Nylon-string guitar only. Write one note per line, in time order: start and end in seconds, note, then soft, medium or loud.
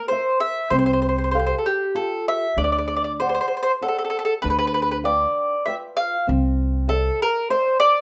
0.11 0.60 A#4 medium
0.11 0.60 C5 soft
0.11 0.60 E5 medium
0.73 1.32 C4 medium
1.34 1.84 G4 soft
1.34 1.84 A4 soft
1.34 1.84 F5 medium
1.95 2.45 F4 soft
1.95 2.45 G4 soft
1.95 2.46 A4 soft
2.58 3.19 D4 medium
3.20 3.70 C5 soft
3.20 3.70 D5 soft
3.20 3.70 F#5 soft
3.81 4.31 C5 soft
3.81 4.31 D5 soft
3.81 4.32 F#5 medium
4.44 5.04 D4 medium
5.04 5.54 B4 medium
5.04 5.54 F5 soft
5.04 5.55 G5 medium
5.67 6.17 F4 soft
5.67 6.16 B4 soft
5.67 6.17 G5 soft
6.27 6.88 C4 medium
6.88 7.38 C5 soft
6.88 7.38 D5 soft
6.88 7.38 E5 medium
7.50 7.99 C5 soft
7.50 7.99 D5 soft
7.50 7.99 E5 soft